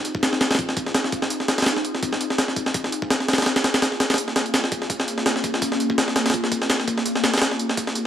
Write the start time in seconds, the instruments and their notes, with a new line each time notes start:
Already playing: ambient pad C4 D#4 F4 G#4
0.05 closed hi-hat
0.15 kick
0.23 snare, closed hi-hat
0.33 snare
0.41 snare, closed hi-hat
0.51 snare, closed hi-hat
0.55 snare, closed hi-hat
0.59 kick, closed hi-hat
0.69 snare
0.77 kick, closed hi-hat
0.86 snare
0.95 snare, closed hi-hat
1.04 snare
1.12 kick, closed hi-hat
1.22 snare
1.30 closed hi-hat
1.40 snare
1.48 snare, closed hi-hat
1.58 snare, closed hi-hat
1.62 snare, closed hi-hat
1.66 snare, closed hi-hat
1.76 snare
1.85 closed hi-hat
1.95 snare
2.03 kick, closed hi-hat
2.12 snare
2.21 closed hi-hat
2.30 snare
2.38 snare, closed hi-hat
2.48 snare
2.56 kick, closed hi-hat
2.66 snare
2.74 kick, closed hi-hat
2.84 snare
2.92 closed hi-hat
3.02 kick
3.10 snare, closed hi-hat
3.20 snare
3.29 snare, closed hi-hat
3.33 snare, closed hi-hat
3.38 snare, closed hi-hat
3.42 snare, closed hi-hat
3.46 ambient pad A#3 C#4 F4, snare, closed hi-hat
3.56 snare, closed hi-hat
3.64 snare, closed hi-hat
3.74 snare, closed hi-hat
3.82 snare, closed hi-hat
3.92 snare
4.00 snare, closed hi-hat
4.10 snare, closed hi-hat
4.14 snare, closed hi-hat
4.18 closed hi-hat
4.28 snare
4.36 snare, closed hi-hat
4.46 closed hi-hat
4.54 snare, closed hi-hat
4.64 snare
4.72 kick, closed hi-hat
4.82 snare
4.90 kick, closed hi-hat
5.00 snare
5.08 closed hi-hat
5.18 snare
5.26 snare, closed hi-hat
5.36 snare
5.44 kick, closed hi-hat
5.54 snare
5.62 kick, closed hi-hat
5.72 snare
5.80 closed hi-hat
5.90 kick
5.98 snare, closed hi-hat
6.08 snare
6.16 snare, closed hi-hat
6.26 snare, closed hi-hat
6.30 kick, snare, closed hi-hat
6.34 closed hi-hat
6.44 snare
6.52 kick, closed hi-hat
6.62 snare
6.70 snare, closed hi-hat
6.80 snare
6.88 kick, closed hi-hat
6.98 snare
7.06 ambient pad C4 D#4 G4, closed hi-hat
7.15 snare
7.24 snare, closed hi-hat
7.34 snare, closed hi-hat
7.38 snare, closed hi-hat
7.42 snare, closed hi-hat
7.51 snare
7.59 closed hi-hat
7.69 snare
7.77 kick, closed hi-hat
7.87 snare
7.95 closed hi-hat